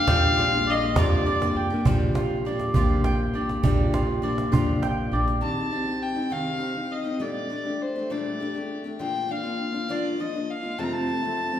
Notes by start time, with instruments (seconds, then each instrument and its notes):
Already playing: mandolin F4 D5, fiddle F5
0.07 upright bass A#1, steel-string acoustic guitar A#2 F3 A#3 D4 G4, mandolin G3 G5, cajon bass, cajon slap
0.23 cajon slap
0.37 steel-string acoustic guitar F3 A#3 D4 G4, mandolin F4
0.53 steel-string acoustic guitar A#3 D4 G4
0.67 mandolin D5, fiddle D#5
0.81 steel-string acoustic guitar A#3 D4 G4
0.96 upright bass F2, steel-string acoustic guitar A#2 F3 A#3 D4 G4, mandolin F4, fiddle D5, cajon bass, cajon slap
1.12 cajon slap
1.26 steel-string acoustic guitar F3 A#3 D4 G4, mandolin D5
1.40 steel-string acoustic guitar A#3 D4 G4, cajon slap
1.55 upright bass F2, mandolin G5
1.70 steel-string acoustic guitar A#3 D4 G4, cajon slap
1.85 upright bass A#1, steel-string acoustic guitar A#2 F3 A#3 D4 G4, mandolin G3, cajon bass
2.00 cajon slap
2.15 mandolin F4, cajon slap
2.45 steel-string acoustic guitar F3 A#3 D4 G4, mandolin D5
2.59 cajon slap
2.74 upright bass A#1, steel-string acoustic guitar A#2 F3 A#3 D4 G4, mandolin F4, cajon bass
3.04 mandolin G5, cajon slap
3.33 upright bass A#1, steel-string acoustic guitar A#3 D4 G4, mandolin D5
3.49 cajon slap
3.63 upright bass A#1, steel-string acoustic guitar A#2 F3 A#3 D4 G4, mandolin G3, cajon bass
3.79 cajon slap
3.93 mandolin F4, cajon slap
4.22 steel-string acoustic guitar F3 A#3 D4 G4, mandolin D5
4.38 cajon slap
4.52 upright bass A#1, steel-string acoustic guitar A#2 F3 A#3 D4 G4, mandolin F4, cajon bass
4.82 mandolin G5, cajon slap
5.12 upright bass A#1, steel-string acoustic guitar A#3 D4 G4, mandolin D5
5.28 cajon slap
5.41 steel-string acoustic guitar C3 D#3 C4 D#4 G4, fiddle A5
5.70 steel-string acoustic guitar D#3 C4 D#4 G4
5.85 steel-string acoustic guitar C4 D#4 G4
6.03 fiddle G5
6.15 steel-string acoustic guitar C4 D#4 G4
6.30 steel-string acoustic guitar C3 D#3 C4 D#4 G4, fiddle F5
6.60 steel-string acoustic guitar D#3 C4 D#4 G4
6.74 steel-string acoustic guitar C4 D#4 G4
6.92 fiddle D#5
7.04 steel-string acoustic guitar C4 D#4 G4
7.19 steel-string acoustic guitar A#2 G3 A3 D4 G4, fiddle D5
7.50 steel-string acoustic guitar G3 A3 D4 G4
7.65 steel-string acoustic guitar A3 D4 G4
7.82 fiddle C5
7.96 steel-string acoustic guitar A3 D4 G4
8.10 steel-string acoustic guitar A#2 G3 A3 D4 G4, fiddle D5
8.40 steel-string acoustic guitar G3 A3 D4 G4
8.54 steel-string acoustic guitar A3 D4 G4
8.84 steel-string acoustic guitar A3 D4 G4
8.99 steel-string acoustic guitar A#2 F3 A#3 D4 F4, fiddle G5
9.28 steel-string acoustic guitar F3 A#3 D4 F4, fiddle F5
9.43 steel-string acoustic guitar A#3 D4 F4
9.72 steel-string acoustic guitar A#3 D4 F4
9.88 steel-string acoustic guitar A#2 F3 A#3 D4 F4, fiddle D5
10.19 steel-string acoustic guitar F3 A#3 D4 F4, fiddle D#5
10.33 steel-string acoustic guitar A#3 D4 F4
10.51 fiddle F5
10.63 steel-string acoustic guitar A#3 D4 F4
10.78 steel-string acoustic guitar F2 C3 F3 A3 C4 F4, fiddle A5
10.84 fiddle A#5
10.93 fiddle A5
11.07 steel-string acoustic guitar F3 A3 C4 F4
11.23 steel-string acoustic guitar F3 A3 C4 F4
11.52 steel-string acoustic guitar F3 A3 C4 F4